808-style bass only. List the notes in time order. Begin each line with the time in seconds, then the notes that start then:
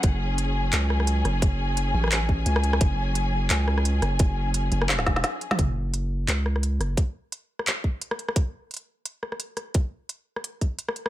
0.03 F#1
0.73 C#2
1.25 F#1
1.94 A1
2.46 C#2
2.81 F#1
3.50 C#2
4.02 F#1
4.72 F#1
5.06 E1
5.59 F#1
6.28 C#2
6.80 F#1